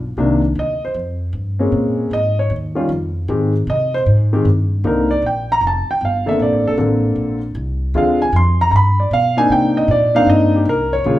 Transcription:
0.00 0.15 B1 medium
0.17 0.54 C2 medium
0.17 0.40 C3 medium
0.17 0.40 D#3 medium
0.17 0.41 A#3 medium
0.17 0.41 D4 medium
0.55 0.93 D2 medium
0.55 0.82 D#5 medium
0.85 0.96 C5 medium
0.94 1.32 F2 medium
1.33 1.71 G2 medium
1.59 2.09 G#3 medium
1.59 2.09 A#3 medium
1.59 2.09 C4 medium
1.59 2.09 C#4 medium
1.72 2.10 A#2 medium
2.11 2.49 G#2 medium
2.11 2.37 D#5 medium
2.39 2.51 C#5 medium
2.50 2.88 D#2 medium
2.75 2.87 D#3 medium
2.75 2.88 G3 medium
2.75 2.88 C#4 medium
2.75 2.88 F4 medium
2.89 3.27 F2 medium
3.28 3.66 G#2 medium
3.28 3.52 D#3 medium
3.28 3.52 G#3 medium
3.28 3.52 C4 medium
3.28 3.52 G4 medium
3.67 4.05 C3 medium
3.67 3.93 D#5 medium
3.94 4.02 C5 medium
4.06 4.44 G#2 medium
4.33 4.44 D#3 medium
4.33 4.44 G#3 medium
4.33 4.44 C4 medium
4.33 4.44 G4 medium
4.45 4.83 G2 medium
4.84 5.21 C2 medium
4.84 5.07 D3 medium
4.84 5.07 A#3 medium
4.84 5.07 C4 medium
4.84 5.07 D#4 medium
4.84 5.10 A#4 medium
5.11 5.23 D5 medium
5.22 5.60 A#1 medium
5.26 5.49 G5 medium
5.52 5.63 A#5 medium
5.61 5.85 F1 medium
5.67 5.89 A5 medium
5.87 6.02 G5 medium
5.87 muted upright bass stroke soft
6.01 6.38 G1 medium
6.05 6.28 F5 medium
6.26 6.75 D3 medium
6.26 6.76 A#3 medium
6.26 6.76 C4 soft
6.26 6.66 A4 medium
6.26 6.40 E5 medium
6.39 6.52 A#1 medium
6.39 6.66 D5 medium
6.52 6.65 A1 soft
6.65 6.77 F1 medium
6.65 6.75 A4 medium
6.77 7.15 A1 medium
6.77 7.37 D3 medium
6.77 7.37 A#3 medium
6.77 7.38 C4 soft
6.77 7.38 A4 medium
7.16 7.54 A#1 medium
7.55 7.93 C2 medium
7.94 8.32 D2 medium
7.94 8.18 D3 medium
7.94 8.18 G#3 medium
7.94 8.18 C4 medium
7.94 8.18 F4 medium
7.94 8.21 F5 medium
8.22 8.34 G#5 medium
8.33 8.71 F2 medium
8.33 8.60 C6 medium
8.61 8.70 A#5 medium
8.71 9.10 G2 medium
8.71 8.74 A#5 medium
8.76 8.99 B5 medium
9.00 9.12 D5 medium
9.11 9.49 B2 medium
9.11 9.37 F5 medium
9.37 9.86 A#3 medium
9.37 9.86 C4 medium
9.37 9.86 D4 medium
9.37 9.87 D#4 medium
9.37 9.50 G#5 loud
9.50 9.87 C3 medium
9.50 9.76 G5 medium
9.77 9.89 D#5 medium
9.88 10.26 A#2 medium
9.88 10.15 D5 medium
10.15 10.64 A#3 medium
10.15 10.64 C4 medium
10.15 10.64 D4 medium
10.15 10.64 D#4 medium
10.15 10.28 F5 loud
10.27 10.65 G2 medium
10.27 10.54 D#5 medium
10.56 10.67 G4 medium
10.65 11.04 C2 medium
10.65 10.93 A#4 medium
10.93 11.19 C#5 medium
11.04 11.19 A#1 medium
11.04 11.19 C#3 medium
11.04 11.19 G#3 medium
11.04 11.19 A#3 medium
11.04 11.19 F4 medium

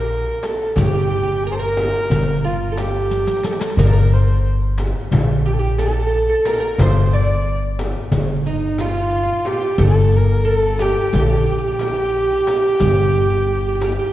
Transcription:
0.00 0.24 A#1 medium
0.00 0.46 A#4 medium
0.00 0.76 A#4 medium
0.43 0.77 A4 medium
0.43 riq medium
0.43 darbuka tek medium
0.43 frame drum medium
0.76 1.91 G1 medium
0.76 0.83 G4 medium
0.76 1.45 G4 medium
0.76 riq medium
0.76 frame drum medium
0.76 darbuka dum medium
0.85 0.91 G4 medium
0.94 0.99 G4 medium
1.01 1.07 G4 medium
1.09 1.14 G4 medium
1.09 darbuka ka soft
1.18 1.22 G4 medium
1.23 1.29 G4 medium
1.32 1.37 G4 medium
1.44 2.47 A#4 loud
1.44 1.51 A#4 medium
1.44 riq soft
1.52 1.58 C5 medium
1.59 2.41 A#4 medium
1.77 darbuka tek medium
1.77 frame drum medium
2.10 3.25 G1 medium
2.10 riq medium
2.10 frame drum medium
2.10 darbuka dum medium
2.44 2.71 F4 medium
2.44 2.80 F4 medium
2.44 riq soft
2.44 darbuka ka soft
2.72 2.78 A4 soft
2.78 3.47 G4 medium
2.78 3.74 G4 medium
2.78 riq medium
2.78 darbuka tek medium
2.78 frame drum medium
3.11 riq medium
3.11 darbuka tek soft
3.19 darbuka ka medium
3.27 riq medium
3.27 darbuka tek medium
3.36 darbuka ka medium
3.43 3.54 A4 medium
3.43 riq medium
3.43 darbuka tek medium
3.43 frame drum medium
3.52 3.61 G4 medium
3.52 darbuka ka medium
3.60 3.78 A4 medium
3.60 riq medium
3.60 darbuka tek medium
3.70 darbuka ka medium
3.77 4.92 G1 loud
3.77 3.85 A#4 medium
3.77 4.15 A#4 medium
3.77 riq medium
3.77 darbuka dum medium
3.77 frame drum medium
3.87 3.92 A4 medium
3.93 4.41 A#4 medium
4.12 4.46 C5 medium
4.12 riq soft
4.78 riq medium
4.78 darbuka tek medium
4.78 frame drum medium
5.11 6.26 A#1 medium
5.11 riq medium
5.11 darbuka dum medium
5.11 frame drum medium
5.46 5.58 G4 medium
5.46 5.55 G4 medium
5.46 riq soft
5.54 5.61 A4 medium
5.59 5.78 G4 medium
5.59 5.80 G4 medium
5.78 5.85 A4 medium
5.78 6.48 A4 medium
5.78 riq soft
5.78 darbuka tek medium
5.78 frame drum medium
5.86 5.91 A4 soft
5.92 5.99 A4 medium
6.00 6.06 A4 soft
6.07 6.13 A4 medium
6.14 6.23 A4 soft
6.29 6.45 A4 medium
6.45 6.53 A#4 medium
6.45 6.84 A#4 medium
6.45 riq soft
6.45 darbuka tek medium
6.45 frame drum medium
6.53 6.60 A4 medium
6.60 6.80 A#4 medium
6.78 7.93 G1 medium
6.78 7.13 C5 medium
6.78 riq medium
6.78 darbuka dum medium
6.78 frame drum medium
6.82 7.16 C5 medium
7.12 7.44 D5 medium
7.12 7.47 D5 medium
7.12 riq soft
7.79 riq soft
7.79 darbuka tek medium
7.79 frame drum medium
8.12 9.27 G1 medium
8.12 riq medium
8.12 darbuka dum medium
8.12 frame drum medium
8.46 8.82 D#4 medium
8.46 8.80 D#4 medium
8.46 riq soft
8.78 8.87 F4 medium
8.78 9.48 F4 medium
8.78 riq soft
8.78 darbuka tek medium
8.78 frame drum medium
8.88 8.93 F4 soft
8.94 9.01 F4 medium
9.02 9.09 F4 soft
9.10 9.14 F4 soft
9.15 9.22 F4 soft
9.23 9.31 F4 soft
9.32 9.38 F4 soft
9.39 9.45 F4 soft
9.45 9.51 F4 medium
9.45 9.85 G4 medium
9.45 darbuka tek medium
9.45 frame drum medium
9.52 9.59 F4 medium
9.60 9.68 F4 medium
9.78 10.94 G1 loud
9.78 10.44 A4 medium
9.78 riq medium
9.78 frame drum medium
9.78 darbuka dum medium
9.83 10.18 A4 medium
10.12 riq soft
10.17 10.50 A#4 medium
10.45 10.80 A4 medium
10.45 10.84 A4 loud
10.79 11.14 G4 medium
10.79 11.15 G4 loud
10.79 riq soft
10.79 darbuka tek medium
10.79 frame drum medium
11.13 12.29 A#1 medium
11.13 11.28 G4 medium
11.13 riq medium
11.13 frame drum medium
11.13 darbuka dum medium
11.19 11.21 G4 medium
11.19 11.34 A4 medium
11.29 11.36 G4 medium
11.29 14.13 G4 loud
11.37 11.43 G4 soft
11.45 11.49 G4 medium
11.45 riq soft
11.51 11.57 G4 soft
11.58 11.65 G4 medium
11.67 11.71 G4 soft
11.72 11.79 G4 medium
11.79 11.87 G4 soft
11.79 riq soft
11.79 darbuka tek medium
11.79 frame drum medium
11.88 11.92 G4 medium
11.94 12.01 G4 soft
12.03 12.10 G4 soft
12.11 12.16 G4 soft
12.18 12.24 G4 soft
12.26 12.32 G4 soft
12.33 12.39 G4 soft
12.40 12.47 G4 soft
12.47 12.55 G4 soft
12.47 riq soft
12.47 darbuka tek medium
12.47 frame drum medium
12.56 12.61 G4 soft
12.62 12.68 G4 soft
12.69 12.74 G4 soft
12.75 12.82 G4 soft
12.80 13.96 G1 medium
12.80 12.91 G4 soft
12.80 riq medium
12.80 frame drum medium
12.80 darbuka dum medium
12.92 12.98 G4 soft
12.99 13.06 G4 soft
13.07 13.13 G4 soft
13.14 13.20 G4 soft
13.14 riq soft
13.14 darbuka ka soft
13.21 13.29 G4 soft
13.30 13.36 G4 soft
13.37 13.44 G4 soft
13.47 13.52 G4 soft
13.47 darbuka ka soft
13.53 13.59 G4 soft
13.61 13.67 G4 soft
13.69 13.74 G4 medium
13.75 13.82 G4 soft
13.81 13.90 G4 soft
13.81 riq soft
13.81 darbuka tek medium
13.81 frame drum medium
13.92 13.97 G4 soft
13.99 14.05 G4 medium
14.06 14.12 G4 soft

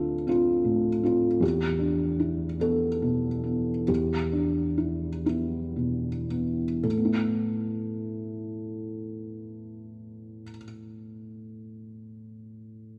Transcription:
0.00 1.39 D2 soft
0.00 0.27 C4 soft
0.00 0.13 D4 soft
0.00 0.27 F4 soft
0.00 0.24 A4 medium
0.27 0.89 C4 soft
0.27 1.01 F4 medium
0.64 1.27 A2 soft
1.03 1.42 C4 soft
1.03 1.40 F4 soft
1.40 3.83 E2 soft
1.40 2.57 G4 medium
1.79 2.44 D4 soft
2.20 2.86 E4 soft
2.60 3.28 B3 soft
2.60 3.85 A4 medium
3.02 3.71 B2 soft
3.44 4.14 B3 soft
3.88 6.80 E2 soft
3.88 5.23 G4 soft
4.32 5.07 D4 soft
4.78 5.25 E4 soft
5.26 6.08 B3 soft
5.26 6.26 E4 soft
5.76 6.63 B2 soft
6.31 6.84 B3 soft
6.83 10.42 A2 soft
6.83 10.43 A4 soft
6.91 10.50 A3 soft
6.97 10.56 B3 soft
7.05 10.64 E4 soft

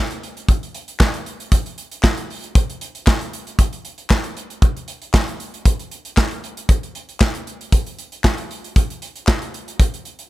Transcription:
0.10 closed hi-hat medium
0.23 closed hi-hat medium
0.37 closed hi-hat medium
0.49 kick loud
0.49 closed hi-hat medium
0.63 closed hi-hat medium
0.74 closed hi-hat medium
0.88 closed hi-hat medium
1.00 kick loud
1.00 snare loud
1.00 clap medium
1.00 clap loud
1.14 closed hi-hat medium
1.26 closed hi-hat medium
1.40 closed hi-hat medium
1.52 kick loud
1.52 closed hi-hat loud
1.66 closed hi-hat medium
1.78 closed hi-hat medium
1.91 closed hi-hat medium
2.03 kick loud
2.03 snare loud
2.03 clap medium
2.17 closed hi-hat medium
2.30 open hi-hat medium
2.44 closed hi-hat medium
2.55 kick loud
2.55 closed hi-hat loud
2.70 closed hi-hat soft
2.81 closed hi-hat medium
2.95 closed hi-hat medium
3.07 kick loud
3.07 snare loud
3.07 clap medium
3.07 clap loud
3.21 closed hi-hat medium
3.33 closed hi-hat medium
3.47 closed hi-hat medium
3.59 kick loud
3.59 closed hi-hat loud
3.73 closed hi-hat medium
3.85 closed hi-hat medium
3.98 closed hi-hat medium
4.10 kick loud
4.10 snare loud
4.10 clap medium
4.24 closed hi-hat medium
4.37 closed hi-hat medium
4.50 closed hi-hat medium
4.62 kick loud
4.62 closed hi-hat loud
4.77 closed hi-hat soft
4.88 closed hi-hat medium
5.02 closed hi-hat medium
5.14 kick loud
5.14 snare loud
5.14 clap medium
5.14 clap loud
5.28 closed hi-hat medium
5.40 closed hi-hat medium
5.54 closed hi-hat medium
5.65 kick loud
5.65 closed hi-hat loud
5.79 closed hi-hat medium
5.91 closed hi-hat medium
6.05 closed hi-hat medium
6.17 kick loud
6.17 snare loud
6.17 clap medium
6.31 closed hi-hat medium
6.44 closed hi-hat medium
6.57 closed hi-hat medium
6.69 kick loud
6.69 closed hi-hat loud
6.83 closed hi-hat soft
6.95 closed hi-hat medium
7.09 closed hi-hat medium
7.20 kick loud
7.20 snare loud
7.20 clap medium
7.20 clap loud
7.35 closed hi-hat medium
7.47 closed hi-hat medium
7.61 closed hi-hat medium
7.72 kick loud
7.72 closed hi-hat loud
7.86 closed hi-hat medium
7.99 closed hi-hat medium
8.12 closed hi-hat medium
8.24 kick loud
8.24 snare loud
8.24 clap medium
8.38 closed hi-hat medium
8.51 closed hi-hat medium
8.64 closed hi-hat medium
8.76 kick loud
8.76 closed hi-hat loud
8.90 closed hi-hat soft
9.02 closed hi-hat medium
9.16 closed hi-hat medium
9.27 kick loud
9.27 snare loud
9.27 clap medium
9.29 clap loud
9.42 closed hi-hat medium
9.54 closed hi-hat medium
9.68 closed hi-hat medium
9.80 kick loud
9.80 closed hi-hat loud
9.94 closed hi-hat medium
10.05 closed hi-hat medium
10.19 closed hi-hat medium

